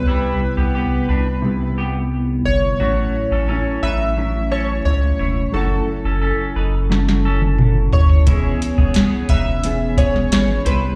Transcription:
Already playing: clean electric guitar C3 G3 B3 E4, synth keys B4
0.06 analog synth bass C2, clean electric guitar G3 E4
0.57 analog synth bass C2, clean electric guitar B3 G4
0.75 clean electric guitar B3 G4
1.09 analog synth bass C2, clean electric guitar D4 B4
1.42 clean electric guitar C3 G3 B3
1.47 clean electric guitar E4
1.78 clean electric guitar B3 G4
2.45 analog synth bass G1, synth keys C#5
2.80 analog synth bass A1, clean electric guitar A2 F#3 A3 C#4 E4 F#4
3.31 analog synth bass A1, clean electric guitar C#4 A4
3.48 clean electric guitar A2 F#3 C#4 E4 A4
3.82 analog synth bass A1, clean electric guitar D#4 B4, synth keys E5
4.17 clean electric guitar A2 F#3 C#4 E4
4.52 clean electric guitar C#4 A4, synth keys C#5
4.85 analog synth bass C#2, clean electric guitar A2 F#3 C#4 E4, synth keys C#5
5.19 analog synth bass E1, clean electric guitar E4 C#5
5.52 analog synth bass F#1, clean electric guitar F#3 A3 C#4 E4 F#4, synth keys A4
5.56 clean electric guitar A4
6.05 analog synth bass F#1, clean electric guitar C#4 A4
6.22 clean electric guitar C#4 A4
6.56 analog synth bass F#1, clean electric guitar D#4 B4
6.90 clean electric guitar F#3 C#4 E4 A4, snare
7.09 snare
7.25 clean electric guitar C#4 A4
7.42 high tom
7.59 clean electric guitar F#3 C#4 E4 A4, mid tom
7.93 analog synth bass F#1, synth keys C#5, floor tom
8.10 floor tom
8.26 analog synth bass E1, clean electric guitar E3 G#3 B3 C#4 E4, kick, closed hi-hat
8.31 clean electric guitar G#4
8.62 closed hi-hat
8.78 analog synth bass E1, clean electric guitar B3 G#4, kick
8.94 clean electric guitar B3 G#4, snare, closed hi-hat
9.29 analog synth bass E1, clean electric guitar D#4 B4, synth keys E5, kick, closed hi-hat
9.64 clean electric guitar E3 B3 C#4 G#4, closed hi-hat
9.97 clean electric guitar B3 G#4, synth keys C#5, kick, closed hi-hat
10.16 snare
10.31 analog synth bass G#1, clean electric guitar E3 B3 C#4 G#4, synth keys C#5, snare, closed hi-hat
10.65 analog synth bass C2, clean electric guitar G3 B3 E4 C5, synth keys B4, closed hi-hat
10.70 clean electric guitar C3

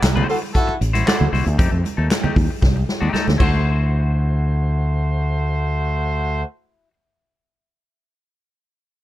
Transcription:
0.02 fretless electric bass C2, muted clean electric guitar stroke, snare, clap, closed hi-hat
0.16 clean electric guitar E4 F#4 C5, high conga, low conga
0.28 horn section F#4 A4 C5, muted clean electric guitar stroke, open hi-hat
0.42 muted clean electric guitar stroke
0.54 horn section E4 F#4 A4, muted clean electric guitar stroke, kick, closed hi-hat
0.67 muted clean electric guitar stroke, muted fretless electric bass stroke, muted conga
0.81 fretless electric bass A1, closed hi-hat
0.93 clean electric guitar E4 F#4 C5, closed hi-hat, high conga
1.06 clean electric guitar E4 F#4 D5, horn section F#4 A4 C5, snare, clap, closed hi-hat, high conga
1.20 fretless electric bass D2, muted clean electric guitar stroke, muted conga, low conga
1.32 fretless electric bass C2, clean electric guitar E4 F#4 C5, open hi-hat, low conga
1.46 fretless electric bass D2, muted clean electric guitar stroke, closed hi-hat
1.58 fretless electric bass F2, clean electric guitar A3 D#4 G4, kick, closed hi-hat
1.72 fretless electric bass F2, muted clean electric guitar stroke
1.84 muted clean electric guitar stroke, closed hi-hat, high conga
1.97 fretless electric bass D#2, clean electric guitar A3 D#4 A4
2.10 muted clean electric guitar stroke, snare, clap, closed hi-hat
2.23 clean electric guitar A3 D#4 G4, muted fretless electric bass stroke, high conga, low conga
2.36 fretless electric bass D#2, muted clean electric guitar stroke, kick, open hi-hat
2.50 muted clean electric guitar stroke
2.62 fretless electric bass C2, muted clean electric guitar stroke, kick, snare
2.76 muted clean electric guitar stroke, muted conga
2.89 snare
3.01 fretless electric bass D#2, clean electric guitar A3 D#4 G4, high conga
3.13 clean electric guitar A3 D#4 A4, muted fretless electric bass stroke, snare, muted conga, high conga
3.28 fretless electric bass D2, muted clean electric guitar stroke, snare, low conga
3.38 fretless electric bass D2, horn section A3 F#4 C5, clean electric guitar E4 F#4, kick, crash, high conga
3.43 clean electric guitar C5

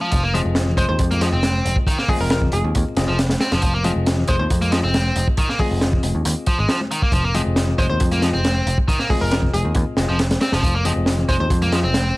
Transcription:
0.01 overdriven electric guitar F3
0.12 picked electric bass F1, overdriven electric guitar F3, kick, closed hi-hat
0.23 overdriven electric guitar A#3
0.34 overdriven electric guitar F3, tine electric piano C4 F4 G#4 D#5, closed hi-hat, high conga, low conga
0.45 picked electric bass F1
0.55 snare, closed hi-hat
0.68 low conga
0.77 picked electric bass F1, overdriven electric guitar G#3, synth pluck C5, kick, closed hi-hat, high conga
0.89 picked electric bass D#2, synth pluck C5
0.99 picked electric bass F2, kick, closed hi-hat
1.11 overdriven electric guitar A#3, closed hi-hat, high conga
1.21 overdriven electric guitar F3, tine electric piano C4 F4 G#4 D#5, snare, closed hi-hat
1.33 picked electric bass F1, overdriven electric guitar C4
1.43 snare, closed hi-hat, high conga
1.65 picked electric bass F1, closed hi-hat
1.76 kick
1.87 overdriven electric guitar D#3, kick, closed hi-hat
1.98 overdriven electric guitar A#3, snare
2.08 tine electric piano C4 F4 G#4 D#5, synth pluck G#4, kick, open hi-hat, high conga, low conga
2.21 picked electric bass F1, synth pluck A#4
2.30 synth pluck A#4, snare, closed hi-hat
2.42 kick, low conga
2.52 picked electric bass F1, synth pluck G#4, closed hi-hat, high conga
2.64 picked electric bass D#2
2.75 picked electric bass D#2, kick, closed hi-hat
2.97 picked electric bass F1, tine electric piano C4 F4 G#4 D#5, snare, closed hi-hat
3.08 picked electric bass F1, overdriven electric guitar F3
3.19 snare, closed hi-hat
3.29 snare, closed hi-hat, high conga
3.40 overdriven electric guitar C4, snare, closed hi-hat
3.52 picked electric bass F1, overdriven electric guitar F3, snare, closed hi-hat
3.62 picked electric bass F1, overdriven electric guitar F3, kick, closed hi-hat
3.74 overdriven electric guitar A#3
3.84 overdriven electric guitar F3, tine electric piano C4 F4 G#4 D#5, closed hi-hat, high conga, low conga
3.96 picked electric bass F1
4.07 snare, closed hi-hat
4.18 low conga
4.28 picked electric bass F1, overdriven electric guitar G#3, synth pluck C5, kick, closed hi-hat, high conga
4.39 picked electric bass D#2, synth pluck C5
4.50 picked electric bass F2, kick, closed hi-hat
4.61 overdriven electric guitar A#3, closed hi-hat, high conga
4.72 overdriven electric guitar F3, tine electric piano C4 F4 G#4 D#5, snare, closed hi-hat
4.84 picked electric bass F1, overdriven electric guitar C4
4.94 snare, closed hi-hat, high conga
5.16 picked electric bass F1, closed hi-hat
5.28 kick
5.37 overdriven electric guitar D#3, kick, closed hi-hat
5.49 overdriven electric guitar A#3, snare
5.59 tine electric piano C4 F4 G#4 D#5, synth pluck G#4, kick, open hi-hat, high conga, low conga
5.71 picked electric bass F1
5.81 snare, closed hi-hat
5.92 kick, low conga
6.03 picked electric bass F1, closed hi-hat, high conga
6.15 picked electric bass D#2
6.25 picked electric bass D#2, closed hi-hat
6.46 overdriven electric guitar F3, kick, closed hi-hat
6.59 picked electric bass G#1, overdriven electric guitar G#3
6.69 overdriven electric guitar F3, snare, closed hi-hat
6.81 high conga
6.91 overdriven electric guitar D#3, closed hi-hat
7.02 overdriven electric guitar A#3, kick
7.12 picked electric bass F1, overdriven electric guitar F3, kick, closed hi-hat
7.24 overdriven electric guitar A#3
7.34 overdriven electric guitar F3, tine electric piano C4 F4 G#4 D#5, closed hi-hat, high conga, low conga
7.46 picked electric bass F1
7.56 snare, closed hi-hat
7.68 low conga
7.78 picked electric bass F1, overdriven electric guitar G#3, synth pluck C5, kick, closed hi-hat, high conga
7.90 picked electric bass D#2, synth pluck C5
8.00 picked electric bass F2, kick, closed hi-hat
8.11 overdriven electric guitar A#3, closed hi-hat, high conga
8.22 overdriven electric guitar F3, tine electric piano C4 F4 G#4 D#5, snare, closed hi-hat
8.34 picked electric bass F1, overdriven electric guitar C4
8.44 snare, closed hi-hat, high conga
8.66 picked electric bass F1, closed hi-hat
8.78 kick
8.88 overdriven electric guitar D#3, kick, closed hi-hat
8.99 overdriven electric guitar A#3, snare
9.09 tine electric piano C4 F4 G#4 D#5, synth pluck G#4, kick, open hi-hat, high conga, low conga
9.21 picked electric bass F1, synth pluck A#4
9.31 synth pluck A#4, snare, closed hi-hat
9.43 kick, low conga
9.53 picked electric bass F1, synth pluck G#4, closed hi-hat, high conga
9.65 picked electric bass D#2
9.75 picked electric bass D#2, kick, closed hi-hat
9.97 picked electric bass F1, tine electric piano C4 F4 G#4 D#5, snare, closed hi-hat
10.09 picked electric bass F1, overdriven electric guitar F3
10.19 snare, closed hi-hat
10.30 snare, closed hi-hat, high conga
10.41 overdriven electric guitar C4, snare, closed hi-hat
10.52 picked electric bass F1, overdriven electric guitar F3, snare, closed hi-hat
10.63 picked electric bass F1, overdriven electric guitar F3, kick, closed hi-hat
10.75 overdriven electric guitar A#3
10.85 overdriven electric guitar F3, tine electric piano C4 F4 G#4 D#5, closed hi-hat, high conga, low conga
10.96 picked electric bass F1
11.06 snare, closed hi-hat
11.18 low conga
11.29 picked electric bass F1, overdriven electric guitar G#3, synth pluck C5, kick, closed hi-hat, high conga
11.40 picked electric bass D#2, synth pluck C5
11.50 picked electric bass F2, kick, closed hi-hat
11.62 overdriven electric guitar A#3, closed hi-hat, high conga
11.72 overdriven electric guitar F3, tine electric piano C4 F4 G#4 D#5, snare, closed hi-hat
11.84 picked electric bass F1, overdriven electric guitar C4
11.94 snare, closed hi-hat, high conga

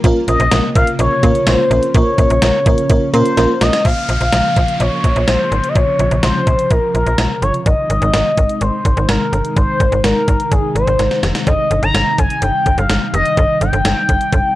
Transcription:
Already playing: string machine A#3 F4
0.04 fm bass A#1, string machine C3 C#3, fm electric piano A#3 C#4 F4 A#4, kick, closed hi-hat
0.28 fm bass A#1, fm electric piano A#3 C#4 F4 A#4, analog synth lead D#5, closed hi-hat
0.40 fm bass A#1, closed hi-hat
0.52 fm bass A#1, fm electric piano A#3 C#4 F4 A#4, snare, closed hi-hat
0.75 fm bass A#1, fm electric piano A#3 C#4 F4 A#4, analog synth lead F5, kick, closed hi-hat
0.87 closed hi-hat
0.99 fm bass A#1, fm electric piano A#3 C#4 F4 A#4, analog synth lead C#5, closed hi-hat
1.23 fm bass A#2, fm electric piano A#3 C#4 F4 A#4, kick, closed hi-hat
1.35 closed hi-hat
1.47 fm bass A#1, fm electric piano A#3 C#4 F4 C#5, analog synth lead C5, snare, closed hi-hat
1.71 fm bass A#1, fm electric piano A#3 C#4 F4 A#4, closed hi-hat
1.83 closed hi-hat
1.94 fm bass A#1, fm electric piano A#3 C#4 F4 A#4, string machine C#4, analog synth lead C#5, kick, closed hi-hat
2.18 fm bass A#1, fm electric piano A#3 C#4 F4 A#4, kick, closed hi-hat
2.30 fm bass A#1, closed hi-hat
2.42 fm bass A#1, fm electric piano A#3 C#4 F4 A#4, snare, closed hi-hat
2.66 fm bass A#1, fm electric piano A#3 C#4 F4 A#4, kick, closed hi-hat
2.78 closed hi-hat
2.90 fm bass A#1, fm electric piano A#3 C#4 F4 A#4, kick, closed hi-hat
3.13 fm bass A#2, fm electric piano A#3 C#4 F4 A#4, analog synth lead C5, closed hi-hat
3.26 closed hi-hat
3.37 fm bass A#1, fm electric piano A#3 C#4 F4 A#4, snare, closed hi-hat
3.61 fm bass A#1, fm electric piano A#3 C#4 F4 A#4, analog synth lead D#5, snare, closed hi-hat
3.73 snare, closed hi-hat
3.85 fm bass A#1, string machine C#3 F3 A#3 F4, analog synth lead F5, kick, closed hi-hat, downlifter
4.09 fm bass A#1, closed hi-hat
4.21 fm bass A#1, closed hi-hat
4.33 fm bass A#1, snare, closed hi-hat
4.56 fm bass A#1, kick, closed hi-hat
4.68 closed hi-hat
4.80 fm bass A#1, analog synth lead C#5, closed hi-hat
5.04 fm bass A#1, kick, closed hi-hat
5.16 fm bass A#1, closed hi-hat
5.28 fm bass A#1, analog synth lead C5, snare, closed hi-hat
5.52 fm bass G#1, closed hi-hat
5.64 closed hi-hat
5.69 analog synth lead D#5
5.75 fm bass A#1, string machine C3, analog synth lead C#5, kick, closed hi-hat
5.99 fm bass A#1, closed hi-hat
6.11 fm bass A#1, closed hi-hat
6.23 fm bass A#1, analog synth lead C5, snare, closed hi-hat
6.47 fm bass A#1, kick, closed hi-hat
6.59 closed hi-hat
6.71 fm bass A#1, analog synth lead A#4, kick, closed hi-hat
6.95 fm bass A#1, analog synth lead A#4, closed hi-hat
7.06 fm bass A#1, closed hi-hat
7.18 fm bass A#1, snare, closed hi-hat
7.42 fm bass G1, analog synth lead C#5, closed hi-hat
7.54 closed hi-hat
7.66 fm bass G#1, string machine C3 D#3 G#3 D#4, analog synth lead D#5, kick, closed hi-hat
7.90 fm bass G#1, closed hi-hat
8.02 fm bass G#1, closed hi-hat
8.14 fm bass G#1, snare, closed hi-hat
8.37 fm bass G#1, kick, closed hi-hat
8.49 closed hi-hat
8.61 fm bass G#1, analog synth lead C5, closed hi-hat
8.85 fm bass G#1, kick, closed hi-hat
8.97 fm bass G#1, closed hi-hat
9.09 fm bass G#1, analog synth lead A#4, snare, closed hi-hat
9.33 fm bass G1, closed hi-hat
9.45 closed hi-hat
9.56 fm bass G#1, analog synth lead C5, kick, closed hi-hat
9.80 fm bass G#1, kick, closed hi-hat
9.92 fm bass G#1, closed hi-hat
10.04 fm bass G#1, analog synth lead A#4, snare, closed hi-hat
10.28 fm bass G#1, kick, closed hi-hat
10.40 closed hi-hat
10.52 fm bass G#1, analog synth lead G#4, kick, closed hi-hat
10.75 fm bass G#1, analog synth lead C5, closed hi-hat
10.87 fm bass G#1, closed hi-hat
10.99 fm bass G#1, snare, closed hi-hat
11.11 snare
11.23 fm bass F1, snare, closed hi-hat
11.35 snare, closed hi-hat
11.47 fm bass G1, string machine G3, analog synth lead D#5, kick, closed hi-hat
11.71 fm bass G1, closed hi-hat
11.83 fm bass G1, analog synth lead A#5, closed hi-hat
11.94 fm bass G1, snare, closed hi-hat
12.18 fm bass G1, analog synth lead G#5, kick, closed hi-hat
12.30 closed hi-hat
12.42 fm bass G1, analog synth lead G5, closed hi-hat
12.66 fm bass G1, kick, closed hi-hat
12.78 fm bass G1, analog synth lead F5, closed hi-hat
12.90 fm bass G1, snare, closed hi-hat
13.13 fm bass F1, analog synth lead D#5, closed hi-hat
13.25 closed hi-hat
13.37 fm bass G1, kick, closed hi-hat
13.61 fm bass G1, analog synth lead G5, closed hi-hat
13.73 fm bass G1, closed hi-hat
13.85 fm bass G1, snare, closed hi-hat
14.09 fm bass G1, kick, closed hi-hat
14.21 closed hi-hat
14.32 fm bass G1, kick, closed hi-hat

